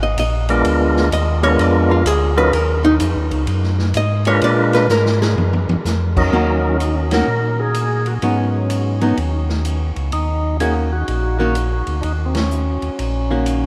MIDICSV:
0, 0, Header, 1, 5, 480
1, 0, Start_track
1, 0, Key_signature, -6, "minor"
1, 0, Tempo, 474308
1, 656, Time_signature, 4, 2, 24, 8
1, 13824, End_track
2, 0, Start_track
2, 0, Title_t, "Hollow-body jazz guitar"
2, 0, Program_c, 0, 26
2, 28, Note_on_c, 0, 75, 81
2, 180, Note_off_c, 0, 75, 0
2, 196, Note_on_c, 0, 75, 91
2, 504, Note_off_c, 0, 75, 0
2, 504, Note_on_c, 0, 74, 81
2, 977, Note_off_c, 0, 74, 0
2, 1148, Note_on_c, 0, 75, 79
2, 1447, Note_off_c, 0, 75, 0
2, 1455, Note_on_c, 0, 73, 95
2, 1627, Note_off_c, 0, 73, 0
2, 1627, Note_on_c, 0, 74, 87
2, 1925, Note_off_c, 0, 74, 0
2, 1937, Note_on_c, 0, 65, 54
2, 2096, Note_off_c, 0, 65, 0
2, 2096, Note_on_c, 0, 68, 81
2, 2399, Note_off_c, 0, 68, 0
2, 2405, Note_on_c, 0, 71, 99
2, 2574, Note_off_c, 0, 71, 0
2, 2574, Note_on_c, 0, 70, 80
2, 2877, Note_off_c, 0, 70, 0
2, 2880, Note_on_c, 0, 63, 94
2, 2979, Note_off_c, 0, 63, 0
2, 4017, Note_on_c, 0, 75, 88
2, 4317, Note_off_c, 0, 75, 0
2, 4322, Note_on_c, 0, 73, 93
2, 4479, Note_off_c, 0, 73, 0
2, 4493, Note_on_c, 0, 74, 97
2, 4794, Note_off_c, 0, 74, 0
2, 4802, Note_on_c, 0, 71, 92
2, 4958, Note_off_c, 0, 71, 0
2, 4967, Note_on_c, 0, 70, 78
2, 5271, Note_off_c, 0, 70, 0
2, 5282, Note_on_c, 0, 68, 83
2, 5726, Note_off_c, 0, 68, 0
2, 6403, Note_on_c, 0, 51, 55
2, 6406, Note_on_c, 0, 58, 56
2, 6412, Note_on_c, 0, 61, 53
2, 6415, Note_on_c, 0, 66, 60
2, 7136, Note_off_c, 0, 51, 0
2, 7137, Note_off_c, 0, 58, 0
2, 7140, Note_off_c, 0, 61, 0
2, 7142, Note_off_c, 0, 66, 0
2, 7201, Note_on_c, 0, 51, 62
2, 7206, Note_on_c, 0, 58, 65
2, 7209, Note_on_c, 0, 61, 67
2, 7216, Note_on_c, 0, 66, 63
2, 7347, Note_off_c, 0, 51, 0
2, 7349, Note_off_c, 0, 58, 0
2, 7351, Note_off_c, 0, 61, 0
2, 7354, Note_off_c, 0, 66, 0
2, 8327, Note_on_c, 0, 54, 58
2, 8332, Note_on_c, 0, 59, 60
2, 8336, Note_on_c, 0, 63, 68
2, 9061, Note_off_c, 0, 54, 0
2, 9063, Note_off_c, 0, 59, 0
2, 9065, Note_off_c, 0, 63, 0
2, 9123, Note_on_c, 0, 54, 65
2, 9128, Note_on_c, 0, 59, 69
2, 9135, Note_on_c, 0, 63, 63
2, 9270, Note_off_c, 0, 54, 0
2, 9273, Note_off_c, 0, 59, 0
2, 9276, Note_off_c, 0, 63, 0
2, 10731, Note_on_c, 0, 51, 56
2, 10737, Note_on_c, 0, 58, 61
2, 10740, Note_on_c, 0, 61, 66
2, 10746, Note_on_c, 0, 66, 61
2, 11017, Note_off_c, 0, 51, 0
2, 11020, Note_off_c, 0, 58, 0
2, 11021, Note_off_c, 0, 61, 0
2, 11024, Note_off_c, 0, 66, 0
2, 11531, Note_on_c, 0, 51, 62
2, 11536, Note_on_c, 0, 58, 61
2, 11542, Note_on_c, 0, 61, 62
2, 11545, Note_on_c, 0, 66, 59
2, 11678, Note_off_c, 0, 51, 0
2, 11680, Note_off_c, 0, 58, 0
2, 11684, Note_off_c, 0, 61, 0
2, 11685, Note_off_c, 0, 66, 0
2, 13463, Note_on_c, 0, 51, 43
2, 13467, Note_on_c, 0, 58, 44
2, 13470, Note_on_c, 0, 61, 48
2, 13473, Note_on_c, 0, 66, 50
2, 13824, Note_off_c, 0, 51, 0
2, 13824, Note_off_c, 0, 58, 0
2, 13824, Note_off_c, 0, 61, 0
2, 13824, Note_off_c, 0, 66, 0
2, 13824, End_track
3, 0, Start_track
3, 0, Title_t, "Tonewheel organ"
3, 0, Program_c, 1, 16
3, 496, Note_on_c, 1, 56, 71
3, 499, Note_on_c, 1, 62, 70
3, 502, Note_on_c, 1, 59, 75
3, 507, Note_on_c, 1, 65, 72
3, 509, Note_on_c, 1, 70, 79
3, 1103, Note_off_c, 1, 56, 0
3, 1105, Note_off_c, 1, 62, 0
3, 1106, Note_off_c, 1, 59, 0
3, 1109, Note_off_c, 1, 65, 0
3, 1109, Note_off_c, 1, 70, 0
3, 1442, Note_on_c, 1, 56, 77
3, 1445, Note_on_c, 1, 59, 69
3, 1448, Note_on_c, 1, 62, 75
3, 1455, Note_on_c, 1, 65, 66
3, 1455, Note_on_c, 1, 70, 85
3, 2054, Note_off_c, 1, 56, 0
3, 2056, Note_off_c, 1, 59, 0
3, 2057, Note_off_c, 1, 62, 0
3, 2060, Note_off_c, 1, 70, 0
3, 2061, Note_off_c, 1, 65, 0
3, 2396, Note_on_c, 1, 54, 81
3, 2396, Note_on_c, 1, 61, 68
3, 2403, Note_on_c, 1, 63, 70
3, 2404, Note_on_c, 1, 65, 69
3, 2404, Note_on_c, 1, 70, 87
3, 2547, Note_off_c, 1, 54, 0
3, 2547, Note_off_c, 1, 61, 0
3, 2551, Note_off_c, 1, 63, 0
3, 2551, Note_off_c, 1, 65, 0
3, 2552, Note_off_c, 1, 70, 0
3, 4317, Note_on_c, 1, 56, 82
3, 4323, Note_on_c, 1, 71, 67
3, 4324, Note_on_c, 1, 62, 68
3, 4328, Note_on_c, 1, 65, 71
3, 4330, Note_on_c, 1, 70, 79
3, 4928, Note_off_c, 1, 56, 0
3, 4931, Note_off_c, 1, 62, 0
3, 4931, Note_off_c, 1, 71, 0
3, 4933, Note_off_c, 1, 65, 0
3, 4934, Note_off_c, 1, 70, 0
3, 6240, Note_on_c, 1, 54, 80
3, 6244, Note_on_c, 1, 61, 65
3, 6250, Note_on_c, 1, 63, 67
3, 6256, Note_on_c, 1, 70, 81
3, 6409, Note_off_c, 1, 61, 0
3, 6421, Note_on_c, 1, 61, 73
3, 6850, Note_off_c, 1, 54, 0
3, 6855, Note_off_c, 1, 63, 0
3, 6858, Note_off_c, 1, 70, 0
3, 6905, Note_off_c, 1, 61, 0
3, 6906, Note_on_c, 1, 63, 76
3, 7043, Note_off_c, 1, 63, 0
3, 7214, Note_on_c, 1, 70, 86
3, 7687, Note_on_c, 1, 68, 107
3, 7701, Note_off_c, 1, 70, 0
3, 8170, Note_on_c, 1, 66, 74
3, 8178, Note_off_c, 1, 68, 0
3, 8242, Note_off_c, 1, 66, 0
3, 8337, Note_on_c, 1, 61, 68
3, 9253, Note_off_c, 1, 61, 0
3, 10252, Note_on_c, 1, 63, 92
3, 10698, Note_off_c, 1, 63, 0
3, 10732, Note_on_c, 1, 68, 92
3, 10875, Note_off_c, 1, 68, 0
3, 11056, Note_on_c, 1, 66, 98
3, 11513, Note_off_c, 1, 66, 0
3, 11525, Note_on_c, 1, 66, 81
3, 12150, Note_off_c, 1, 66, 0
3, 12156, Note_on_c, 1, 62, 59
3, 12168, Note_on_c, 1, 63, 78
3, 12186, Note_off_c, 1, 62, 0
3, 12270, Note_off_c, 1, 63, 0
3, 12406, Note_on_c, 1, 60, 50
3, 12488, Note_on_c, 1, 61, 69
3, 12496, Note_off_c, 1, 60, 0
3, 13824, Note_off_c, 1, 61, 0
3, 13824, End_track
4, 0, Start_track
4, 0, Title_t, "Tonewheel organ"
4, 0, Program_c, 2, 16
4, 0, Note_on_c, 2, 32, 91
4, 166, Note_off_c, 2, 32, 0
4, 175, Note_on_c, 2, 34, 83
4, 640, Note_off_c, 2, 34, 0
4, 654, Note_on_c, 2, 38, 75
4, 1119, Note_off_c, 2, 38, 0
4, 1132, Note_on_c, 2, 39, 90
4, 1597, Note_off_c, 2, 39, 0
4, 1608, Note_on_c, 2, 41, 96
4, 2074, Note_off_c, 2, 41, 0
4, 2081, Note_on_c, 2, 38, 87
4, 2549, Note_off_c, 2, 38, 0
4, 2561, Note_on_c, 2, 39, 79
4, 3029, Note_off_c, 2, 39, 0
4, 3041, Note_on_c, 2, 41, 94
4, 3198, Note_on_c, 2, 39, 55
4, 3199, Note_off_c, 2, 41, 0
4, 3355, Note_on_c, 2, 37, 66
4, 3362, Note_off_c, 2, 39, 0
4, 3508, Note_off_c, 2, 37, 0
4, 3513, Note_on_c, 2, 42, 86
4, 3983, Note_off_c, 2, 42, 0
4, 3999, Note_on_c, 2, 44, 87
4, 4466, Note_off_c, 2, 44, 0
4, 4479, Note_on_c, 2, 46, 72
4, 4945, Note_off_c, 2, 46, 0
4, 4954, Note_on_c, 2, 44, 94
4, 5423, Note_off_c, 2, 44, 0
4, 5439, Note_on_c, 2, 42, 88
4, 5734, Note_off_c, 2, 42, 0
4, 5751, Note_on_c, 2, 42, 39
4, 5834, Note_off_c, 2, 42, 0
4, 5917, Note_on_c, 2, 41, 84
4, 6384, Note_off_c, 2, 41, 0
4, 6397, Note_on_c, 2, 39, 73
4, 7319, Note_off_c, 2, 39, 0
4, 7362, Note_on_c, 2, 46, 74
4, 8283, Note_off_c, 2, 46, 0
4, 8321, Note_on_c, 2, 44, 71
4, 9245, Note_off_c, 2, 44, 0
4, 9286, Note_on_c, 2, 39, 79
4, 10045, Note_off_c, 2, 39, 0
4, 10082, Note_on_c, 2, 37, 58
4, 10236, Note_off_c, 2, 37, 0
4, 10246, Note_on_c, 2, 39, 73
4, 11170, Note_off_c, 2, 39, 0
4, 11212, Note_on_c, 2, 34, 81
4, 11971, Note_off_c, 2, 34, 0
4, 12014, Note_on_c, 2, 38, 58
4, 12166, Note_off_c, 2, 38, 0
4, 12178, Note_on_c, 2, 39, 70
4, 12935, Note_off_c, 2, 39, 0
4, 12974, Note_on_c, 2, 39, 36
4, 13056, Note_off_c, 2, 39, 0
4, 13144, Note_on_c, 2, 34, 73
4, 13824, Note_off_c, 2, 34, 0
4, 13824, End_track
5, 0, Start_track
5, 0, Title_t, "Drums"
5, 177, Note_on_c, 9, 44, 52
5, 177, Note_on_c, 9, 51, 70
5, 279, Note_off_c, 9, 44, 0
5, 279, Note_off_c, 9, 51, 0
5, 491, Note_on_c, 9, 51, 50
5, 592, Note_off_c, 9, 51, 0
5, 653, Note_on_c, 9, 51, 67
5, 754, Note_off_c, 9, 51, 0
5, 976, Note_on_c, 9, 38, 46
5, 1077, Note_off_c, 9, 38, 0
5, 1135, Note_on_c, 9, 44, 60
5, 1135, Note_on_c, 9, 51, 70
5, 1236, Note_off_c, 9, 44, 0
5, 1236, Note_off_c, 9, 51, 0
5, 1449, Note_on_c, 9, 51, 49
5, 1550, Note_off_c, 9, 51, 0
5, 1610, Note_on_c, 9, 51, 66
5, 1711, Note_off_c, 9, 51, 0
5, 2082, Note_on_c, 9, 44, 67
5, 2082, Note_on_c, 9, 51, 81
5, 2183, Note_off_c, 9, 44, 0
5, 2183, Note_off_c, 9, 51, 0
5, 2561, Note_on_c, 9, 51, 67
5, 2662, Note_off_c, 9, 51, 0
5, 3033, Note_on_c, 9, 44, 64
5, 3033, Note_on_c, 9, 51, 69
5, 3134, Note_off_c, 9, 44, 0
5, 3134, Note_off_c, 9, 51, 0
5, 3352, Note_on_c, 9, 51, 49
5, 3453, Note_off_c, 9, 51, 0
5, 3511, Note_on_c, 9, 51, 63
5, 3612, Note_off_c, 9, 51, 0
5, 3677, Note_on_c, 9, 38, 28
5, 3779, Note_off_c, 9, 38, 0
5, 3832, Note_on_c, 9, 38, 42
5, 3933, Note_off_c, 9, 38, 0
5, 3986, Note_on_c, 9, 44, 55
5, 3986, Note_on_c, 9, 51, 66
5, 4087, Note_off_c, 9, 44, 0
5, 4087, Note_off_c, 9, 51, 0
5, 4302, Note_on_c, 9, 51, 54
5, 4403, Note_off_c, 9, 51, 0
5, 4467, Note_on_c, 9, 51, 68
5, 4569, Note_off_c, 9, 51, 0
5, 4788, Note_on_c, 9, 51, 48
5, 4793, Note_on_c, 9, 38, 41
5, 4889, Note_off_c, 9, 51, 0
5, 4894, Note_off_c, 9, 38, 0
5, 4953, Note_on_c, 9, 44, 61
5, 4958, Note_on_c, 9, 38, 56
5, 5054, Note_off_c, 9, 44, 0
5, 5059, Note_off_c, 9, 38, 0
5, 5118, Note_on_c, 9, 38, 59
5, 5219, Note_off_c, 9, 38, 0
5, 5279, Note_on_c, 9, 38, 72
5, 5380, Note_off_c, 9, 38, 0
5, 5442, Note_on_c, 9, 48, 73
5, 5543, Note_off_c, 9, 48, 0
5, 5599, Note_on_c, 9, 48, 73
5, 5700, Note_off_c, 9, 48, 0
5, 5761, Note_on_c, 9, 48, 89
5, 5862, Note_off_c, 9, 48, 0
5, 5923, Note_on_c, 9, 44, 61
5, 5928, Note_on_c, 9, 38, 56
5, 6024, Note_off_c, 9, 44, 0
5, 6029, Note_off_c, 9, 38, 0
5, 6241, Note_on_c, 9, 36, 81
5, 6242, Note_on_c, 9, 49, 80
5, 6342, Note_off_c, 9, 36, 0
5, 6343, Note_off_c, 9, 49, 0
5, 6882, Note_on_c, 9, 44, 52
5, 6882, Note_on_c, 9, 51, 59
5, 6983, Note_off_c, 9, 44, 0
5, 6983, Note_off_c, 9, 51, 0
5, 7195, Note_on_c, 9, 51, 61
5, 7200, Note_on_c, 9, 38, 69
5, 7296, Note_off_c, 9, 51, 0
5, 7301, Note_off_c, 9, 38, 0
5, 7837, Note_on_c, 9, 44, 44
5, 7837, Note_on_c, 9, 51, 62
5, 7938, Note_off_c, 9, 44, 0
5, 7938, Note_off_c, 9, 51, 0
5, 8154, Note_on_c, 9, 51, 41
5, 8255, Note_off_c, 9, 51, 0
5, 8319, Note_on_c, 9, 51, 53
5, 8420, Note_off_c, 9, 51, 0
5, 8802, Note_on_c, 9, 44, 52
5, 8802, Note_on_c, 9, 51, 60
5, 8903, Note_off_c, 9, 44, 0
5, 8903, Note_off_c, 9, 51, 0
5, 9122, Note_on_c, 9, 51, 41
5, 9223, Note_off_c, 9, 51, 0
5, 9284, Note_on_c, 9, 51, 53
5, 9385, Note_off_c, 9, 51, 0
5, 9604, Note_on_c, 9, 38, 43
5, 9706, Note_off_c, 9, 38, 0
5, 9763, Note_on_c, 9, 44, 50
5, 9763, Note_on_c, 9, 51, 59
5, 9864, Note_off_c, 9, 44, 0
5, 9864, Note_off_c, 9, 51, 0
5, 10082, Note_on_c, 9, 51, 41
5, 10183, Note_off_c, 9, 51, 0
5, 10242, Note_on_c, 9, 51, 58
5, 10344, Note_off_c, 9, 51, 0
5, 10728, Note_on_c, 9, 44, 51
5, 10728, Note_on_c, 9, 51, 61
5, 10829, Note_off_c, 9, 44, 0
5, 10829, Note_off_c, 9, 51, 0
5, 11210, Note_on_c, 9, 51, 53
5, 11311, Note_off_c, 9, 51, 0
5, 11689, Note_on_c, 9, 44, 52
5, 11689, Note_on_c, 9, 51, 60
5, 11790, Note_off_c, 9, 44, 0
5, 11790, Note_off_c, 9, 51, 0
5, 12009, Note_on_c, 9, 51, 42
5, 12111, Note_off_c, 9, 51, 0
5, 12173, Note_on_c, 9, 51, 54
5, 12274, Note_off_c, 9, 51, 0
5, 12494, Note_on_c, 9, 51, 54
5, 12499, Note_on_c, 9, 38, 72
5, 12595, Note_off_c, 9, 51, 0
5, 12600, Note_off_c, 9, 38, 0
5, 12660, Note_on_c, 9, 44, 59
5, 12761, Note_off_c, 9, 44, 0
5, 12975, Note_on_c, 9, 51, 40
5, 13076, Note_off_c, 9, 51, 0
5, 13144, Note_on_c, 9, 51, 56
5, 13245, Note_off_c, 9, 51, 0
5, 13621, Note_on_c, 9, 44, 46
5, 13621, Note_on_c, 9, 51, 62
5, 13722, Note_off_c, 9, 44, 0
5, 13722, Note_off_c, 9, 51, 0
5, 13824, End_track
0, 0, End_of_file